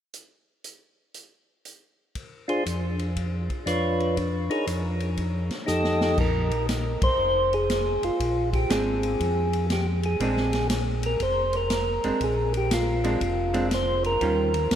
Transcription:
0.14 closed hi-hat
0.64 closed hi-hat
1.14 closed hi-hat
1.65 closed hi-hat
2.15 kick, ride
2.48 D4 F4 G#4 C5, ride
2.66 F2, hi-hat pedal, ride
2.99 ride
3.16 kick, ride
3.50 kick, ride
3.66 F2 D4 F4 B4 C#5, cross-stick, hi-hat pedal, ride
4.00 ride
4.17 kick, ride
4.50 D#4 G#4 A#4 C#5, ride
4.67 F2, hi-hat pedal, ride
5.00 ride
5.17 kick, ride
5.51 snare, ride
5.66 F2 D#4 G4 A4 D#5, snare, hi-hat pedal
5.84 snare
6.01 A4, snare
6.18 A#1 A#4, kick, crash
6.51 ride
6.69 snare, hi-hat pedal, ride
7.02 A#1 C5, kick, ride
7.18 F1
7.53 G#4, ride
7.70 snare, hi-hat pedal, ride
8.02 F1 F4, ride
8.20 A#1, kick, ride
8.53 G4, kick, ride
8.70 G#1 G#3 C4 D4 G#4, snare, hi-hat pedal, ride
9.03 ride
9.20 F2, kick, ride
9.53 ride
9.70 G4, snare, hi-hat pedal, ride
10.03 G#4, ride
10.20 A#1 G#3 C4 D4, kick, ride
10.37 snare
10.53 snare, ride
10.70 snare, hi-hat pedal, ride
11.03 A#4, ride
11.20 F1 C5, kick, ride
11.53 A#4, ride
11.70 snare, hi-hat pedal, ride
12.04 F1 G#3 C4 D4, ride
12.21 A#1 G#4, kick, ride
12.54 G4, ride
12.71 F4, snare, hi-hat pedal, ride
13.04 G#3 C4 D4, ride
13.21 F1, kick, ride
13.54 G#3 C4 D4, ride
13.71 C5, snare, hi-hat pedal, ride
14.04 A#4, ride
14.21 D#2 D#3 G3 C#4 F4, kick, ride
14.54 ride
14.71 D2, snare, hi-hat pedal, ride

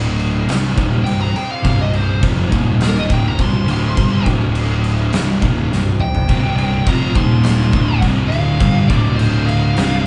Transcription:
Already playing: D1 D2 A2 D3 A3 E4
0.19 crash
0.46 C1 C2 G2 C3 G3 C4, snare, crash
0.76 D#1 D#2 A#2 D#3, kick, crash
1.04 C1 C2 G2 G5, crash
1.21 A#5
1.36 G5, crash
1.51 F5
1.63 C1 C2 G2 C3 F5, kick, crash
1.81 D#5
1.93 C5, crash
2.21 F1 F2 C3 F3, kick, crash
2.51 D#1 D#2 A#2 D#3, kick, crash
2.81 A#4, snare, crash
2.99 D#5
3.08 D1 D2 A2 C3 D3 G3 C4 G5, kick, crash
3.28 A#5
3.38 C1 C2 G2 C3 C6, kick, crash
3.67 D1 D2 A2 D3, crash
3.71 C6
3.97 G1 G2 D3 G3, kick, crash
4.26 D1 D2 A2 D3 A3 E4, kick, crash
4.55 crash
4.84 crash
5.11 C1 C2 G2 C3 G3 C4, snare, crash
5.41 D#1 D#2 A#2 D#3, kick, crash
5.72 C1 C2 G2, snare
6.00 G5, mid tom
6.15 floor tom
6.29 C1 C2 G2 C3, kick, crash
6.58 crash
6.86 F1 F2 C3 F3 A#5, kick, crash
7.15 D#1 D#2 A#2 D#3 C6, kick, crash
7.43 C6, snare, crash
7.72 D1 D2 A2 C3 D3 G3 C4, kick, crash
8.02 C1 C2 G2 C3, kick, crash
8.28 D1 D2 A2 D3 F5, crash
8.60 G1 G2 D3 G3, kick, crash
8.88 D1 D2 A2 D3 A3 E4 D5, kick, crash
9.16 C5, crash
9.46 F5, crash
9.76 C1 C2 G2 C3 G3 C4, snare, crash

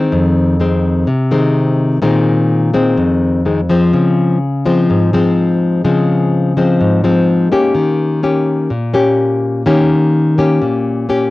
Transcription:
Already playing: D#3 G#3 C4
0.12 F2
0.60 D#3 G#3 C4
1.07 C3
1.31 D#3 G#3 C4
2.02 A#2 D#3 G#3 C4
2.74 D#3 G#3 C4
2.98 F2
3.45 D#3 G#3 C4
3.70 F3 G#3 C4
3.93 C#3
4.66 F3 G#3 C4
4.90 G#2
5.13 F3 G#3 C4
5.84 C#3 F3 G#3 C4
6.57 F3 G#3 C4
6.81 G#2
7.04 F3 G#3 C4
7.52 A#3 C#4 G4
7.74 D#3
8.23 A#3 C#4 G4
8.70 A#2
8.94 A#3 C#4 G4
9.66 D#3 A#3 C#4 G4
10.38 A#3 C#4 G4
10.62 A#2
11.09 A#3 C#4 G4

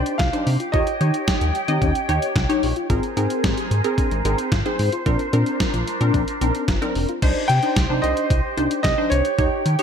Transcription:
Already playing: D4 D#4 G4 C5 D5 G5
0.06 closed hi-hat
0.18 C2 F4 F5, kick, snare, closed hi-hat
0.33 D4 D#4 C5, closed hi-hat
0.47 C3, open hi-hat
0.60 F4, closed hi-hat
0.72 D#2 D#4 F4 G4 C#5 D#5 G5, kick, closed hi-hat
0.87 closed hi-hat
1.01 D#3 D#4 G4 C#5, closed hi-hat
1.14 closed hi-hat
1.28 G4, kick, snare, closed hi-hat
1.41 D#2 G4, closed hi-hat
1.55 closed hi-hat
1.68 D#3 C4 D#4 G4 D#5, closed hi-hat
1.82 D#2 C#4, kick, closed hi-hat
1.95 closed hi-hat
2.09 D#2 D#4 G4 C#5, closed hi-hat
2.22 closed hi-hat
2.36 C2 F4, kick, snare, closed hi-hat
2.49 D#4 G4 C#5, closed hi-hat
2.63 A#1, open hi-hat
2.76 F4, closed hi-hat
2.90 G#1 C4 F4 G#4 A#4 C5, kick, closed hi-hat
3.03 closed hi-hat
3.17 G#2 C4 D#4 G#4 A#4, closed hi-hat
3.30 closed hi-hat
3.44 G#1 G4, kick, snare, closed hi-hat
3.57 G4, closed hi-hat
3.71 G#2, closed hi-hat
3.84 C4 G#4 A#4, closed hi-hat
3.98 D4, kick, closed hi-hat
4.11 G#1, closed hi-hat
4.25 G#1 C4 D#4 G#4 A#4, closed hi-hat
4.38 closed hi-hat
4.52 G#1 F4, kick, snare, closed hi-hat
4.66 C4 D#4 G#4 C5, closed hi-hat
4.79 G#2, open hi-hat
4.92 F4, closed hi-hat
5.06 A#1 C4 D4 F4 A#4, kick, closed hi-hat
5.19 closed hi-hat
5.33 A#2 C4 D4 A#4, closed hi-hat
5.46 closed hi-hat
5.60 F4, kick, snare, closed hi-hat
5.74 A#1 F4, closed hi-hat
5.88 closed hi-hat
6.01 A#2 C4 D4 A#4, closed hi-hat
6.14 A#1 D4, kick, closed hi-hat
6.28 closed hi-hat
6.41 A#1 C4 D4 D#4 A#4, closed hi-hat
6.55 closed hi-hat
6.68 G1 F4, kick, snare, closed hi-hat
6.82 C4 D4 D#4 A#4, closed hi-hat
6.95 F1, open hi-hat
7.09 F4, closed hi-hat
7.22 C2 D4 D#4 G4 C5, kick, closed hi-hat, crash
7.48 C3 G5, closed hi-hat
7.63 D4 D#4 C5, closed hi-hat
7.76 C2, kick, snare, closed hi-hat
7.90 C3 D4 D#4 C5
8.02 C2 D#5, closed hi-hat
8.17 closed hi-hat
8.30 C2, kick, closed hi-hat
8.57 C2 D4 D#4 C5, closed hi-hat
8.71 closed hi-hat
8.83 C2 D#5, kick, snare, closed hi-hat
8.98 D4 D#4 C5
9.10 C2 C#5, closed hi-hat
9.25 closed hi-hat
9.38 D#2 D#4 G4 C#5 G5, kick, closed hi-hat
9.66 D#3, closed hi-hat
9.79 D#4 G4 C#5, closed hi-hat

